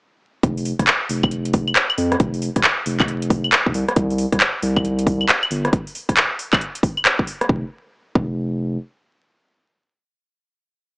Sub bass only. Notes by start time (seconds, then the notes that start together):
0.43 F1
0.79 F1
1.10 F1
1.98 F2
2.20 F1
2.56 F1
2.86 F1
3.66 F1
3.74 C2
3.96 C2
4.32 C2
4.63 C2
5.51 G1
7.49 F1
8.15 F1